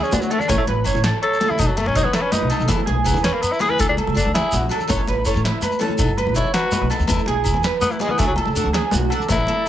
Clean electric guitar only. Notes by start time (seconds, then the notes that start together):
Already playing: G#4
0.12 F#4
0.30 A4
0.49 C#5
0.68 B4
0.86 C#5
1.05 A4
1.22 C#5
1.40 A4
1.96 C#5
2.13 B4
2.32 B4
2.50 A4
2.86 G#4
3.23 B4
3.60 G#4
3.98 A4
4.34 G#4
4.53 F#4
4.72 A4
4.90 C#5
5.08 B4
5.26 C#5
5.45 E4
5.63 B4
5.82 A4
6.18 B4
6.36 C#5
6.55 B4
6.73 B4
6.91 A4
7.27 G#4
7.64 B4
8.01 G#4
8.38 A4
8.73 G#4
8.92 F#4
9.10 A4
9.29 muted clean electric guitar stroke
9.48 A4